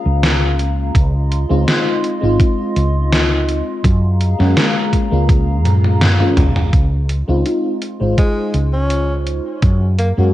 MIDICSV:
0, 0, Header, 1, 6, 480
1, 0, Start_track
1, 0, Key_signature, -5, "major"
1, 0, Tempo, 722892
1, 632, Time_signature, 4, 2, 24, 8
1, 6863, End_track
2, 0, Start_track
2, 0, Title_t, "Ambient pad"
2, 0, Program_c, 0, 92
2, 0, Note_on_c, 0, 68, 79
2, 0, Note_on_c, 0, 77, 74
2, 0, Note_on_c, 0, 82, 89
2, 613, Note_off_c, 0, 77, 0
2, 614, Note_off_c, 0, 68, 0
2, 614, Note_off_c, 0, 82, 0
2, 633, Note_on_c, 0, 84, 91
2, 634, Note_on_c, 0, 65, 79
2, 634, Note_on_c, 0, 75, 74
2, 2533, Note_off_c, 0, 84, 0
2, 2534, Note_off_c, 0, 65, 0
2, 2534, Note_off_c, 0, 75, 0
2, 2553, Note_on_c, 0, 68, 79
2, 2553, Note_on_c, 0, 77, 75
2, 2553, Note_on_c, 0, 82, 90
2, 4453, Note_off_c, 0, 68, 0
2, 4453, Note_off_c, 0, 77, 0
2, 4453, Note_off_c, 0, 82, 0
2, 4468, Note_on_c, 0, 84, 85
2, 4469, Note_on_c, 0, 65, 77
2, 4470, Note_on_c, 0, 75, 71
2, 6371, Note_off_c, 0, 65, 0
2, 6371, Note_off_c, 0, 84, 0
2, 6372, Note_off_c, 0, 75, 0
2, 6394, Note_on_c, 0, 82, 86
2, 6395, Note_on_c, 0, 68, 75
2, 6395, Note_on_c, 0, 77, 73
2, 6863, Note_off_c, 0, 68, 0
2, 6863, Note_off_c, 0, 77, 0
2, 6863, Note_off_c, 0, 82, 0
2, 6863, End_track
3, 0, Start_track
3, 0, Title_t, "FM electric piano"
3, 0, Program_c, 1, 5
3, 0, Note_on_c, 1, 56, 93
3, 0, Note_on_c, 1, 58, 86
3, 0, Note_on_c, 1, 61, 84
3, 0, Note_on_c, 1, 65, 105
3, 613, Note_off_c, 1, 56, 0
3, 617, Note_off_c, 1, 58, 0
3, 620, Note_off_c, 1, 61, 0
3, 623, Note_off_c, 1, 65, 0
3, 992, Note_on_c, 1, 56, 99
3, 996, Note_on_c, 1, 60, 90
3, 999, Note_on_c, 1, 63, 88
3, 1002, Note_on_c, 1, 65, 109
3, 1092, Note_off_c, 1, 56, 0
3, 1094, Note_off_c, 1, 60, 0
3, 1095, Note_off_c, 1, 63, 0
3, 1097, Note_off_c, 1, 65, 0
3, 1106, Note_on_c, 1, 56, 85
3, 1109, Note_on_c, 1, 60, 79
3, 1113, Note_on_c, 1, 63, 76
3, 1116, Note_on_c, 1, 65, 94
3, 1445, Note_off_c, 1, 56, 0
3, 1447, Note_off_c, 1, 60, 0
3, 1449, Note_off_c, 1, 63, 0
3, 1450, Note_off_c, 1, 65, 0
3, 1466, Note_on_c, 1, 56, 95
3, 1472, Note_on_c, 1, 60, 84
3, 1480, Note_on_c, 1, 63, 88
3, 1486, Note_on_c, 1, 65, 106
3, 2532, Note_off_c, 1, 56, 0
3, 2535, Note_off_c, 1, 60, 0
3, 2539, Note_off_c, 1, 63, 0
3, 2542, Note_off_c, 1, 65, 0
3, 2911, Note_on_c, 1, 56, 100
3, 2914, Note_on_c, 1, 58, 87
3, 2918, Note_on_c, 1, 61, 87
3, 2921, Note_on_c, 1, 66, 104
3, 3001, Note_off_c, 1, 56, 0
3, 3002, Note_off_c, 1, 58, 0
3, 3004, Note_off_c, 1, 61, 0
3, 3006, Note_off_c, 1, 66, 0
3, 3029, Note_on_c, 1, 56, 97
3, 3032, Note_on_c, 1, 58, 87
3, 3035, Note_on_c, 1, 61, 89
3, 3037, Note_on_c, 1, 65, 106
3, 3366, Note_off_c, 1, 56, 0
3, 3368, Note_off_c, 1, 58, 0
3, 3370, Note_off_c, 1, 61, 0
3, 3371, Note_off_c, 1, 65, 0
3, 3388, Note_on_c, 1, 56, 91
3, 3394, Note_on_c, 1, 58, 84
3, 3400, Note_on_c, 1, 61, 90
3, 3406, Note_on_c, 1, 65, 101
3, 4088, Note_off_c, 1, 56, 0
3, 4091, Note_off_c, 1, 58, 0
3, 4094, Note_off_c, 1, 61, 0
3, 4097, Note_off_c, 1, 65, 0
3, 4113, Note_on_c, 1, 56, 84
3, 4116, Note_on_c, 1, 58, 76
3, 4119, Note_on_c, 1, 61, 75
3, 4122, Note_on_c, 1, 65, 90
3, 4456, Note_off_c, 1, 56, 0
3, 4457, Note_off_c, 1, 58, 0
3, 4459, Note_off_c, 1, 61, 0
3, 4460, Note_off_c, 1, 65, 0
3, 4834, Note_on_c, 1, 56, 89
3, 4838, Note_on_c, 1, 60, 78
3, 4840, Note_on_c, 1, 63, 78
3, 4843, Note_on_c, 1, 65, 99
3, 4933, Note_off_c, 1, 56, 0
3, 4934, Note_off_c, 1, 60, 0
3, 4936, Note_off_c, 1, 63, 0
3, 4937, Note_off_c, 1, 65, 0
3, 4950, Note_on_c, 1, 56, 75
3, 4954, Note_on_c, 1, 60, 70
3, 4957, Note_on_c, 1, 63, 71
3, 4960, Note_on_c, 1, 65, 85
3, 5287, Note_off_c, 1, 56, 0
3, 5289, Note_off_c, 1, 60, 0
3, 5291, Note_off_c, 1, 63, 0
3, 5292, Note_off_c, 1, 65, 0
3, 5311, Note_on_c, 1, 56, 89
3, 5317, Note_on_c, 1, 72, 83
3, 5325, Note_on_c, 1, 63, 80
3, 5330, Note_on_c, 1, 65, 97
3, 6375, Note_off_c, 1, 56, 0
3, 6378, Note_off_c, 1, 72, 0
3, 6381, Note_off_c, 1, 63, 0
3, 6384, Note_off_c, 1, 65, 0
3, 6752, Note_on_c, 1, 56, 87
3, 6755, Note_on_c, 1, 58, 82
3, 6760, Note_on_c, 1, 61, 82
3, 6762, Note_on_c, 1, 66, 100
3, 6842, Note_off_c, 1, 56, 0
3, 6843, Note_off_c, 1, 58, 0
3, 6845, Note_off_c, 1, 61, 0
3, 6847, Note_off_c, 1, 66, 0
3, 6863, End_track
4, 0, Start_track
4, 0, Title_t, "Tenor saxophone"
4, 0, Program_c, 2, 66
4, 5432, Note_on_c, 2, 56, 88
4, 5722, Note_off_c, 2, 56, 0
4, 5796, Note_on_c, 2, 61, 86
4, 6082, Note_off_c, 2, 61, 0
4, 6632, Note_on_c, 2, 58, 83
4, 6713, Note_off_c, 2, 58, 0
4, 6761, Note_on_c, 2, 58, 69
4, 6832, Note_off_c, 2, 58, 0
4, 6863, End_track
5, 0, Start_track
5, 0, Title_t, "Fretless electric bass"
5, 0, Program_c, 3, 35
5, 37, Note_on_c, 3, 37, 96
5, 588, Note_off_c, 3, 37, 0
5, 630, Note_on_c, 3, 37, 98
5, 950, Note_off_c, 3, 37, 0
5, 997, Note_on_c, 3, 37, 101
5, 1085, Note_off_c, 3, 37, 0
5, 1479, Note_on_c, 3, 32, 79
5, 1565, Note_off_c, 3, 32, 0
5, 1832, Note_on_c, 3, 37, 80
5, 2390, Note_off_c, 3, 37, 0
5, 2551, Note_on_c, 3, 42, 100
5, 2870, Note_off_c, 3, 42, 0
5, 2918, Note_on_c, 3, 42, 101
5, 3005, Note_off_c, 3, 42, 0
5, 3399, Note_on_c, 3, 37, 83
5, 3753, Note_off_c, 3, 37, 0
5, 3753, Note_on_c, 3, 42, 86
5, 4189, Note_off_c, 3, 42, 0
5, 4232, Note_on_c, 3, 37, 102
5, 4361, Note_off_c, 3, 37, 0
5, 4361, Note_on_c, 3, 30, 89
5, 4446, Note_off_c, 3, 30, 0
5, 4472, Note_on_c, 3, 37, 93
5, 4791, Note_off_c, 3, 37, 0
5, 4839, Note_on_c, 3, 37, 92
5, 4925, Note_off_c, 3, 37, 0
5, 5317, Note_on_c, 3, 32, 75
5, 5405, Note_off_c, 3, 32, 0
5, 5671, Note_on_c, 3, 37, 74
5, 6230, Note_off_c, 3, 37, 0
5, 6391, Note_on_c, 3, 42, 92
5, 6710, Note_off_c, 3, 42, 0
5, 6757, Note_on_c, 3, 42, 92
5, 6844, Note_off_c, 3, 42, 0
5, 6863, End_track
6, 0, Start_track
6, 0, Title_t, "Drums"
6, 155, Note_on_c, 9, 38, 113
6, 155, Note_on_c, 9, 42, 72
6, 221, Note_off_c, 9, 38, 0
6, 221, Note_off_c, 9, 42, 0
6, 394, Note_on_c, 9, 42, 60
6, 461, Note_off_c, 9, 42, 0
6, 630, Note_on_c, 9, 36, 113
6, 634, Note_on_c, 9, 42, 76
6, 697, Note_off_c, 9, 36, 0
6, 700, Note_off_c, 9, 42, 0
6, 874, Note_on_c, 9, 42, 66
6, 940, Note_off_c, 9, 42, 0
6, 1114, Note_on_c, 9, 38, 108
6, 1114, Note_on_c, 9, 42, 76
6, 1181, Note_off_c, 9, 38, 0
6, 1181, Note_off_c, 9, 42, 0
6, 1354, Note_on_c, 9, 42, 63
6, 1420, Note_off_c, 9, 42, 0
6, 1590, Note_on_c, 9, 36, 109
6, 1595, Note_on_c, 9, 42, 75
6, 1657, Note_off_c, 9, 36, 0
6, 1661, Note_off_c, 9, 42, 0
6, 1833, Note_on_c, 9, 42, 60
6, 1900, Note_off_c, 9, 42, 0
6, 2074, Note_on_c, 9, 38, 111
6, 2074, Note_on_c, 9, 42, 75
6, 2140, Note_off_c, 9, 38, 0
6, 2140, Note_off_c, 9, 42, 0
6, 2314, Note_on_c, 9, 42, 61
6, 2380, Note_off_c, 9, 42, 0
6, 2551, Note_on_c, 9, 36, 117
6, 2553, Note_on_c, 9, 42, 78
6, 2617, Note_off_c, 9, 36, 0
6, 2619, Note_off_c, 9, 42, 0
6, 2792, Note_on_c, 9, 42, 66
6, 2859, Note_off_c, 9, 42, 0
6, 2920, Note_on_c, 9, 38, 35
6, 2987, Note_off_c, 9, 38, 0
6, 3032, Note_on_c, 9, 38, 116
6, 3032, Note_on_c, 9, 42, 81
6, 3099, Note_off_c, 9, 38, 0
6, 3099, Note_off_c, 9, 42, 0
6, 3271, Note_on_c, 9, 36, 59
6, 3273, Note_on_c, 9, 42, 66
6, 3338, Note_off_c, 9, 36, 0
6, 3339, Note_off_c, 9, 42, 0
6, 3512, Note_on_c, 9, 36, 112
6, 3514, Note_on_c, 9, 42, 79
6, 3578, Note_off_c, 9, 36, 0
6, 3581, Note_off_c, 9, 42, 0
6, 3753, Note_on_c, 9, 42, 61
6, 3753, Note_on_c, 9, 48, 59
6, 3820, Note_off_c, 9, 42, 0
6, 3820, Note_off_c, 9, 48, 0
6, 3880, Note_on_c, 9, 48, 56
6, 3947, Note_off_c, 9, 48, 0
6, 3993, Note_on_c, 9, 38, 114
6, 3993, Note_on_c, 9, 42, 78
6, 3993, Note_on_c, 9, 47, 78
6, 4060, Note_off_c, 9, 38, 0
6, 4060, Note_off_c, 9, 42, 0
6, 4060, Note_off_c, 9, 47, 0
6, 4119, Note_on_c, 9, 47, 74
6, 4186, Note_off_c, 9, 47, 0
6, 4232, Note_on_c, 9, 36, 57
6, 4232, Note_on_c, 9, 42, 62
6, 4232, Note_on_c, 9, 45, 91
6, 4298, Note_off_c, 9, 36, 0
6, 4299, Note_off_c, 9, 42, 0
6, 4299, Note_off_c, 9, 45, 0
6, 4358, Note_on_c, 9, 45, 91
6, 4425, Note_off_c, 9, 45, 0
6, 4472, Note_on_c, 9, 36, 111
6, 4472, Note_on_c, 9, 42, 75
6, 4538, Note_off_c, 9, 36, 0
6, 4538, Note_off_c, 9, 42, 0
6, 4711, Note_on_c, 9, 42, 66
6, 4778, Note_off_c, 9, 42, 0
6, 4952, Note_on_c, 9, 42, 75
6, 5019, Note_off_c, 9, 42, 0
6, 5191, Note_on_c, 9, 42, 65
6, 5258, Note_off_c, 9, 42, 0
6, 5432, Note_on_c, 9, 36, 106
6, 5432, Note_on_c, 9, 42, 76
6, 5498, Note_off_c, 9, 36, 0
6, 5498, Note_off_c, 9, 42, 0
6, 5670, Note_on_c, 9, 42, 62
6, 5737, Note_off_c, 9, 42, 0
6, 5910, Note_on_c, 9, 42, 74
6, 5977, Note_off_c, 9, 42, 0
6, 6152, Note_on_c, 9, 42, 63
6, 6219, Note_off_c, 9, 42, 0
6, 6390, Note_on_c, 9, 42, 77
6, 6391, Note_on_c, 9, 36, 115
6, 6456, Note_off_c, 9, 42, 0
6, 6457, Note_off_c, 9, 36, 0
6, 6630, Note_on_c, 9, 42, 66
6, 6697, Note_off_c, 9, 42, 0
6, 6863, End_track
0, 0, End_of_file